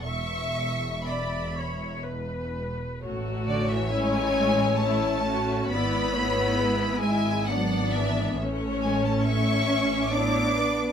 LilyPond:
<<
  \new Staff \with { instrumentName = "Violin section" } { \time 3/4 \key a \major \tempo 4 = 67 cis'''4 b''4 r4 | r8 d''16 e''16 gis''4 a''4 | b''4. gis''8 fis''8 e''8 | r8 gis''16 a''16 cis'''4 d'''4 | }
  \new Staff \with { instrumentName = "Violin section" } { \time 3/4 \key a \major e''4 e''4 r4 | cis''2. | d''8 cis''8 b'8 e''8 d''4 | cis''4 e''4 cis''8 b'8 | }
  \new Staff \with { instrumentName = "Viola section" } { \time 3/4 \key a \major << { e''4 d''8 cis''8 b'4 | fis'4 e'4 e'8 fis'8 | e'2 d'4 | cis'2 e'8 d'8 | } \\ { r2. | a4 cis'4 cis'4 | b8 a8 gis4 b4 | a4 a8 cis'8 b4 | } >> }
  \new Staff \with { instrumentName = "Cello section" } { \clef bass \time 3/4 \key a \major e,2. | r8 d16 e16 gis4 a4 | b4. gis8 fis8 e8 | r8 gis16 a16 cis'4 d'4 | }
  \new Staff \with { instrumentName = "Double bass section" } { \clef bass \time 3/4 \key a \major e,,2. | a,,2. | gis,,2. | a,,2. | }
>>